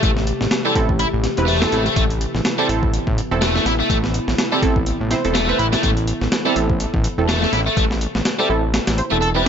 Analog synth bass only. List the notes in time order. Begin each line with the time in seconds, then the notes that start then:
0.03 A1
0.41 A1
0.75 A1
1.13 A1
1.38 E1
1.72 A1
1.96 A1
2.34 A1
2.69 A1
3.07 A1
3.31 E1
3.66 A1
3.90 A1
4.28 A1
4.62 A1
5.00 A1
5.25 E1
5.59 A1
5.83 A1
6.21 A1
6.56 A1
6.94 A1
7.18 E1
7.53 A1
7.77 A1
8.15 A1
8.50 A1
8.88 A1
9.12 E1